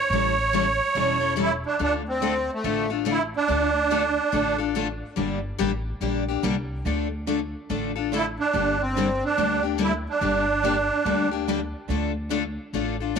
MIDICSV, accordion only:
0, 0, Header, 1, 2, 480
1, 0, Start_track
1, 0, Key_signature, -1, "minor"
1, 0, Tempo, 420757
1, 130, Time_signature, 4, 2, 24, 8
1, 15049, End_track
2, 0, Start_track
2, 0, Title_t, "Accordion"
2, 0, Program_c, 0, 21
2, 0, Note_on_c, 0, 73, 85
2, 1526, Note_off_c, 0, 73, 0
2, 1616, Note_on_c, 0, 64, 97
2, 1740, Note_off_c, 0, 64, 0
2, 1897, Note_on_c, 0, 62, 88
2, 2065, Note_off_c, 0, 62, 0
2, 2082, Note_on_c, 0, 62, 91
2, 2209, Note_off_c, 0, 62, 0
2, 2381, Note_on_c, 0, 60, 88
2, 2861, Note_off_c, 0, 60, 0
2, 2894, Note_on_c, 0, 57, 84
2, 3312, Note_off_c, 0, 57, 0
2, 3558, Note_on_c, 0, 64, 91
2, 3678, Note_off_c, 0, 64, 0
2, 3840, Note_on_c, 0, 62, 85
2, 5215, Note_off_c, 0, 62, 0
2, 9298, Note_on_c, 0, 64, 88
2, 9424, Note_off_c, 0, 64, 0
2, 9578, Note_on_c, 0, 62, 85
2, 10055, Note_on_c, 0, 60, 87
2, 10062, Note_off_c, 0, 62, 0
2, 10539, Note_off_c, 0, 60, 0
2, 10549, Note_on_c, 0, 62, 93
2, 10979, Note_off_c, 0, 62, 0
2, 11211, Note_on_c, 0, 64, 86
2, 11337, Note_off_c, 0, 64, 0
2, 11517, Note_on_c, 0, 62, 81
2, 12886, Note_off_c, 0, 62, 0
2, 15049, End_track
0, 0, End_of_file